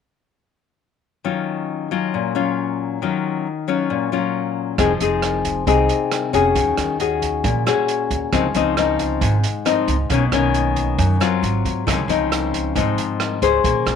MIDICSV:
0, 0, Header, 1, 4, 480
1, 0, Start_track
1, 0, Tempo, 442804
1, 1353, Time_signature, 4, 2, 24, 8
1, 15128, End_track
2, 0, Start_track
2, 0, Title_t, "Nylon-string guitar"
2, 0, Program_c, 0, 24
2, 1349, Note_on_c, 0, 51, 54
2, 1352, Note_on_c, 0, 54, 42
2, 1354, Note_on_c, 0, 61, 45
2, 1359, Note_on_c, 0, 65, 47
2, 2032, Note_off_c, 0, 54, 0
2, 2034, Note_off_c, 0, 61, 0
2, 2036, Note_off_c, 0, 65, 0
2, 2071, Note_on_c, 0, 54, 54
2, 2076, Note_on_c, 0, 61, 51
2, 2080, Note_on_c, 0, 65, 64
2, 2286, Note_off_c, 0, 51, 0
2, 2320, Note_on_c, 0, 46, 57
2, 2513, Note_off_c, 0, 54, 0
2, 2515, Note_off_c, 0, 61, 0
2, 2516, Note_off_c, 0, 65, 0
2, 2546, Note_on_c, 0, 54, 50
2, 2552, Note_on_c, 0, 61, 53
2, 2557, Note_on_c, 0, 65, 54
2, 3230, Note_off_c, 0, 54, 0
2, 3231, Note_off_c, 0, 61, 0
2, 3235, Note_off_c, 0, 65, 0
2, 3251, Note_off_c, 0, 46, 0
2, 3273, Note_on_c, 0, 51, 57
2, 3278, Note_on_c, 0, 54, 48
2, 3282, Note_on_c, 0, 65, 52
2, 3285, Note_on_c, 0, 61, 50
2, 3750, Note_off_c, 0, 54, 0
2, 3751, Note_off_c, 0, 61, 0
2, 3753, Note_off_c, 0, 65, 0
2, 3986, Note_on_c, 0, 54, 55
2, 3992, Note_on_c, 0, 61, 59
2, 3999, Note_on_c, 0, 65, 61
2, 4208, Note_off_c, 0, 51, 0
2, 4229, Note_on_c, 0, 46, 57
2, 4428, Note_off_c, 0, 54, 0
2, 4432, Note_off_c, 0, 61, 0
2, 4433, Note_off_c, 0, 65, 0
2, 4467, Note_on_c, 0, 54, 48
2, 4473, Note_on_c, 0, 61, 57
2, 4479, Note_on_c, 0, 65, 53
2, 5149, Note_off_c, 0, 54, 0
2, 5152, Note_off_c, 0, 61, 0
2, 5154, Note_off_c, 0, 65, 0
2, 5164, Note_off_c, 0, 46, 0
2, 5183, Note_on_c, 0, 53, 46
2, 5189, Note_on_c, 0, 63, 50
2, 5190, Note_on_c, 0, 60, 46
2, 5195, Note_on_c, 0, 68, 55
2, 5328, Note_off_c, 0, 60, 0
2, 5329, Note_off_c, 0, 63, 0
2, 5331, Note_off_c, 0, 68, 0
2, 5427, Note_on_c, 0, 60, 55
2, 5436, Note_on_c, 0, 63, 52
2, 5441, Note_on_c, 0, 68, 63
2, 6110, Note_off_c, 0, 60, 0
2, 6111, Note_off_c, 0, 68, 0
2, 6112, Note_off_c, 0, 63, 0
2, 6121, Note_off_c, 0, 53, 0
2, 6143, Note_on_c, 0, 48, 47
2, 6148, Note_on_c, 0, 60, 50
2, 6149, Note_on_c, 0, 63, 49
2, 6153, Note_on_c, 0, 68, 55
2, 6828, Note_off_c, 0, 60, 0
2, 6829, Note_off_c, 0, 63, 0
2, 6830, Note_off_c, 0, 68, 0
2, 6863, Note_on_c, 0, 61, 58
2, 6871, Note_on_c, 0, 66, 52
2, 6877, Note_on_c, 0, 68, 57
2, 7081, Note_off_c, 0, 48, 0
2, 7102, Note_on_c, 0, 51, 49
2, 7546, Note_off_c, 0, 61, 0
2, 7550, Note_off_c, 0, 66, 0
2, 7551, Note_off_c, 0, 68, 0
2, 7586, Note_on_c, 0, 61, 46
2, 7594, Note_on_c, 0, 66, 45
2, 7596, Note_on_c, 0, 68, 55
2, 8039, Note_off_c, 0, 51, 0
2, 8067, Note_on_c, 0, 46, 50
2, 8268, Note_off_c, 0, 61, 0
2, 8270, Note_off_c, 0, 66, 0
2, 8272, Note_off_c, 0, 68, 0
2, 8307, Note_on_c, 0, 61, 60
2, 8311, Note_on_c, 0, 66, 58
2, 8319, Note_on_c, 0, 68, 57
2, 9002, Note_off_c, 0, 46, 0
2, 9007, Note_off_c, 0, 61, 0
2, 9010, Note_off_c, 0, 66, 0
2, 9011, Note_off_c, 0, 68, 0
2, 9025, Note_on_c, 0, 49, 50
2, 9026, Note_on_c, 0, 53, 48
2, 9030, Note_on_c, 0, 60, 49
2, 9039, Note_on_c, 0, 63, 56
2, 9166, Note_off_c, 0, 53, 0
2, 9170, Note_off_c, 0, 60, 0
2, 9171, Note_off_c, 0, 63, 0
2, 9270, Note_on_c, 0, 53, 55
2, 9278, Note_on_c, 0, 60, 57
2, 9282, Note_on_c, 0, 63, 64
2, 9470, Note_off_c, 0, 53, 0
2, 9472, Note_off_c, 0, 60, 0
2, 9475, Note_off_c, 0, 63, 0
2, 9509, Note_on_c, 0, 53, 52
2, 9514, Note_on_c, 0, 60, 47
2, 9518, Note_on_c, 0, 63, 59
2, 9961, Note_off_c, 0, 49, 0
2, 9988, Note_on_c, 0, 44, 50
2, 10153, Note_off_c, 0, 53, 0
2, 10155, Note_off_c, 0, 60, 0
2, 10156, Note_off_c, 0, 63, 0
2, 10463, Note_on_c, 0, 53, 48
2, 10468, Note_on_c, 0, 60, 48
2, 10477, Note_on_c, 0, 63, 57
2, 10787, Note_off_c, 0, 53, 0
2, 10790, Note_off_c, 0, 60, 0
2, 10792, Note_off_c, 0, 63, 0
2, 10923, Note_off_c, 0, 44, 0
2, 10950, Note_on_c, 0, 47, 51
2, 10953, Note_on_c, 0, 51, 51
2, 10958, Note_on_c, 0, 58, 46
2, 10967, Note_on_c, 0, 61, 55
2, 11090, Note_off_c, 0, 51, 0
2, 11093, Note_off_c, 0, 58, 0
2, 11095, Note_off_c, 0, 61, 0
2, 11192, Note_on_c, 0, 51, 56
2, 11197, Note_on_c, 0, 58, 52
2, 11201, Note_on_c, 0, 61, 60
2, 11885, Note_off_c, 0, 47, 0
2, 11906, Note_on_c, 0, 42, 46
2, 12111, Note_off_c, 0, 51, 0
2, 12113, Note_off_c, 0, 58, 0
2, 12116, Note_off_c, 0, 61, 0
2, 12145, Note_on_c, 0, 54, 57
2, 12151, Note_on_c, 0, 60, 56
2, 12153, Note_on_c, 0, 65, 63
2, 12363, Note_off_c, 0, 42, 0
2, 12828, Note_off_c, 0, 54, 0
2, 12830, Note_off_c, 0, 60, 0
2, 12832, Note_off_c, 0, 65, 0
2, 12863, Note_on_c, 0, 49, 50
2, 12865, Note_on_c, 0, 53, 49
2, 12872, Note_on_c, 0, 60, 49
2, 12874, Note_on_c, 0, 63, 53
2, 13007, Note_off_c, 0, 53, 0
2, 13008, Note_off_c, 0, 60, 0
2, 13012, Note_off_c, 0, 63, 0
2, 13108, Note_on_c, 0, 53, 50
2, 13111, Note_on_c, 0, 60, 54
2, 13116, Note_on_c, 0, 63, 63
2, 13790, Note_off_c, 0, 53, 0
2, 13791, Note_off_c, 0, 60, 0
2, 13794, Note_off_c, 0, 63, 0
2, 13803, Note_off_c, 0, 49, 0
2, 13825, Note_on_c, 0, 44, 50
2, 13832, Note_on_c, 0, 53, 51
2, 13836, Note_on_c, 0, 60, 44
2, 13836, Note_on_c, 0, 63, 54
2, 14511, Note_off_c, 0, 53, 0
2, 14512, Note_off_c, 0, 60, 0
2, 14514, Note_off_c, 0, 63, 0
2, 14547, Note_on_c, 0, 61, 52
2, 14552, Note_on_c, 0, 68, 56
2, 14555, Note_on_c, 0, 72, 59
2, 14764, Note_off_c, 0, 44, 0
2, 14786, Note_on_c, 0, 58, 45
2, 15128, Note_off_c, 0, 58, 0
2, 15128, Note_off_c, 0, 61, 0
2, 15128, Note_off_c, 0, 68, 0
2, 15128, Note_off_c, 0, 72, 0
2, 15128, End_track
3, 0, Start_track
3, 0, Title_t, "Upright bass"
3, 0, Program_c, 1, 32
3, 5184, Note_on_c, 1, 29, 79
3, 5409, Note_off_c, 1, 29, 0
3, 5427, Note_on_c, 1, 29, 72
3, 6103, Note_off_c, 1, 29, 0
3, 6145, Note_on_c, 1, 36, 87
3, 6369, Note_off_c, 1, 36, 0
3, 6866, Note_on_c, 1, 29, 74
3, 7089, Note_off_c, 1, 29, 0
3, 7103, Note_on_c, 1, 39, 79
3, 7327, Note_off_c, 1, 39, 0
3, 7345, Note_on_c, 1, 39, 77
3, 8021, Note_off_c, 1, 39, 0
3, 8065, Note_on_c, 1, 34, 93
3, 8288, Note_off_c, 1, 34, 0
3, 8785, Note_on_c, 1, 39, 75
3, 9008, Note_off_c, 1, 39, 0
3, 9025, Note_on_c, 1, 37, 76
3, 9248, Note_off_c, 1, 37, 0
3, 9266, Note_on_c, 1, 37, 75
3, 9942, Note_off_c, 1, 37, 0
3, 9986, Note_on_c, 1, 32, 88
3, 10209, Note_off_c, 1, 32, 0
3, 10704, Note_on_c, 1, 37, 79
3, 10928, Note_off_c, 1, 37, 0
3, 10943, Note_on_c, 1, 35, 79
3, 11168, Note_off_c, 1, 35, 0
3, 11184, Note_on_c, 1, 35, 77
3, 11862, Note_off_c, 1, 35, 0
3, 11907, Note_on_c, 1, 42, 93
3, 12130, Note_off_c, 1, 42, 0
3, 12386, Note_on_c, 1, 32, 84
3, 12610, Note_off_c, 1, 32, 0
3, 12629, Note_on_c, 1, 44, 76
3, 12851, Note_off_c, 1, 44, 0
3, 12869, Note_on_c, 1, 37, 77
3, 13088, Note_off_c, 1, 37, 0
3, 13095, Note_on_c, 1, 37, 73
3, 13778, Note_off_c, 1, 37, 0
3, 13827, Note_on_c, 1, 32, 86
3, 14051, Note_off_c, 1, 32, 0
3, 14546, Note_on_c, 1, 37, 74
3, 14771, Note_off_c, 1, 37, 0
3, 14788, Note_on_c, 1, 34, 81
3, 15012, Note_off_c, 1, 34, 0
3, 15022, Note_on_c, 1, 34, 71
3, 15128, Note_off_c, 1, 34, 0
3, 15128, End_track
4, 0, Start_track
4, 0, Title_t, "Drums"
4, 5184, Note_on_c, 9, 36, 52
4, 5185, Note_on_c, 9, 37, 56
4, 5185, Note_on_c, 9, 42, 56
4, 5293, Note_off_c, 9, 36, 0
4, 5294, Note_off_c, 9, 37, 0
4, 5294, Note_off_c, 9, 42, 0
4, 5425, Note_on_c, 9, 42, 40
4, 5534, Note_off_c, 9, 42, 0
4, 5663, Note_on_c, 9, 37, 50
4, 5663, Note_on_c, 9, 42, 41
4, 5771, Note_off_c, 9, 37, 0
4, 5771, Note_off_c, 9, 42, 0
4, 5905, Note_on_c, 9, 36, 21
4, 5906, Note_on_c, 9, 42, 41
4, 6013, Note_off_c, 9, 36, 0
4, 6014, Note_off_c, 9, 42, 0
4, 6146, Note_on_c, 9, 36, 50
4, 6149, Note_on_c, 9, 42, 53
4, 6254, Note_off_c, 9, 36, 0
4, 6257, Note_off_c, 9, 42, 0
4, 6387, Note_on_c, 9, 42, 41
4, 6496, Note_off_c, 9, 42, 0
4, 6629, Note_on_c, 9, 37, 54
4, 6629, Note_on_c, 9, 42, 42
4, 6737, Note_off_c, 9, 37, 0
4, 6737, Note_off_c, 9, 42, 0
4, 6867, Note_on_c, 9, 36, 21
4, 6871, Note_on_c, 9, 42, 38
4, 6975, Note_off_c, 9, 36, 0
4, 6980, Note_off_c, 9, 42, 0
4, 7106, Note_on_c, 9, 36, 54
4, 7106, Note_on_c, 9, 42, 53
4, 7214, Note_off_c, 9, 36, 0
4, 7214, Note_off_c, 9, 42, 0
4, 7344, Note_on_c, 9, 37, 51
4, 7344, Note_on_c, 9, 42, 37
4, 7453, Note_off_c, 9, 37, 0
4, 7453, Note_off_c, 9, 42, 0
4, 7586, Note_on_c, 9, 42, 35
4, 7694, Note_off_c, 9, 42, 0
4, 7826, Note_on_c, 9, 36, 21
4, 7830, Note_on_c, 9, 42, 39
4, 7935, Note_off_c, 9, 36, 0
4, 7938, Note_off_c, 9, 42, 0
4, 8067, Note_on_c, 9, 36, 47
4, 8067, Note_on_c, 9, 42, 45
4, 8175, Note_off_c, 9, 36, 0
4, 8176, Note_off_c, 9, 42, 0
4, 8313, Note_on_c, 9, 37, 55
4, 8313, Note_on_c, 9, 42, 37
4, 8421, Note_off_c, 9, 37, 0
4, 8421, Note_off_c, 9, 42, 0
4, 8547, Note_on_c, 9, 42, 39
4, 8656, Note_off_c, 9, 42, 0
4, 8786, Note_on_c, 9, 36, 23
4, 8789, Note_on_c, 9, 42, 37
4, 8894, Note_off_c, 9, 36, 0
4, 8898, Note_off_c, 9, 42, 0
4, 9025, Note_on_c, 9, 36, 56
4, 9026, Note_on_c, 9, 37, 55
4, 9026, Note_on_c, 9, 42, 51
4, 9134, Note_off_c, 9, 36, 0
4, 9134, Note_off_c, 9, 37, 0
4, 9134, Note_off_c, 9, 42, 0
4, 9262, Note_on_c, 9, 42, 38
4, 9371, Note_off_c, 9, 42, 0
4, 9507, Note_on_c, 9, 37, 53
4, 9507, Note_on_c, 9, 42, 39
4, 9615, Note_off_c, 9, 37, 0
4, 9615, Note_off_c, 9, 42, 0
4, 9746, Note_on_c, 9, 36, 22
4, 9748, Note_on_c, 9, 42, 38
4, 9855, Note_off_c, 9, 36, 0
4, 9857, Note_off_c, 9, 42, 0
4, 9986, Note_on_c, 9, 36, 50
4, 9988, Note_on_c, 9, 42, 48
4, 10094, Note_off_c, 9, 36, 0
4, 10096, Note_off_c, 9, 42, 0
4, 10228, Note_on_c, 9, 42, 40
4, 10336, Note_off_c, 9, 42, 0
4, 10469, Note_on_c, 9, 37, 55
4, 10469, Note_on_c, 9, 42, 41
4, 10578, Note_off_c, 9, 37, 0
4, 10578, Note_off_c, 9, 42, 0
4, 10707, Note_on_c, 9, 36, 22
4, 10710, Note_on_c, 9, 42, 43
4, 10816, Note_off_c, 9, 36, 0
4, 10818, Note_off_c, 9, 42, 0
4, 10946, Note_on_c, 9, 36, 53
4, 10947, Note_on_c, 9, 42, 55
4, 11055, Note_off_c, 9, 36, 0
4, 11056, Note_off_c, 9, 42, 0
4, 11189, Note_on_c, 9, 37, 53
4, 11189, Note_on_c, 9, 42, 38
4, 11297, Note_off_c, 9, 37, 0
4, 11297, Note_off_c, 9, 42, 0
4, 11429, Note_on_c, 9, 42, 35
4, 11537, Note_off_c, 9, 42, 0
4, 11667, Note_on_c, 9, 36, 22
4, 11668, Note_on_c, 9, 42, 38
4, 11775, Note_off_c, 9, 36, 0
4, 11776, Note_off_c, 9, 42, 0
4, 11907, Note_on_c, 9, 36, 47
4, 11908, Note_on_c, 9, 42, 44
4, 12016, Note_off_c, 9, 36, 0
4, 12017, Note_off_c, 9, 42, 0
4, 12153, Note_on_c, 9, 37, 51
4, 12153, Note_on_c, 9, 42, 38
4, 12261, Note_off_c, 9, 37, 0
4, 12261, Note_off_c, 9, 42, 0
4, 12396, Note_on_c, 9, 42, 38
4, 12505, Note_off_c, 9, 42, 0
4, 12630, Note_on_c, 9, 36, 22
4, 12635, Note_on_c, 9, 42, 37
4, 12739, Note_off_c, 9, 36, 0
4, 12744, Note_off_c, 9, 42, 0
4, 12870, Note_on_c, 9, 36, 58
4, 12876, Note_on_c, 9, 37, 55
4, 12876, Note_on_c, 9, 42, 53
4, 12979, Note_off_c, 9, 36, 0
4, 12984, Note_off_c, 9, 37, 0
4, 12984, Note_off_c, 9, 42, 0
4, 13111, Note_on_c, 9, 42, 37
4, 13219, Note_off_c, 9, 42, 0
4, 13354, Note_on_c, 9, 37, 52
4, 13354, Note_on_c, 9, 42, 39
4, 13463, Note_off_c, 9, 37, 0
4, 13463, Note_off_c, 9, 42, 0
4, 13589, Note_on_c, 9, 36, 21
4, 13595, Note_on_c, 9, 42, 39
4, 13698, Note_off_c, 9, 36, 0
4, 13703, Note_off_c, 9, 42, 0
4, 13828, Note_on_c, 9, 36, 51
4, 13830, Note_on_c, 9, 42, 48
4, 13937, Note_off_c, 9, 36, 0
4, 13939, Note_off_c, 9, 42, 0
4, 14070, Note_on_c, 9, 42, 41
4, 14179, Note_off_c, 9, 42, 0
4, 14308, Note_on_c, 9, 37, 54
4, 14308, Note_on_c, 9, 42, 40
4, 14416, Note_off_c, 9, 37, 0
4, 14416, Note_off_c, 9, 42, 0
4, 14548, Note_on_c, 9, 36, 23
4, 14550, Note_on_c, 9, 42, 43
4, 14657, Note_off_c, 9, 36, 0
4, 14659, Note_off_c, 9, 42, 0
4, 14788, Note_on_c, 9, 36, 56
4, 14792, Note_on_c, 9, 42, 56
4, 14897, Note_off_c, 9, 36, 0
4, 14901, Note_off_c, 9, 42, 0
4, 15031, Note_on_c, 9, 37, 53
4, 15031, Note_on_c, 9, 42, 39
4, 15128, Note_off_c, 9, 37, 0
4, 15128, Note_off_c, 9, 42, 0
4, 15128, End_track
0, 0, End_of_file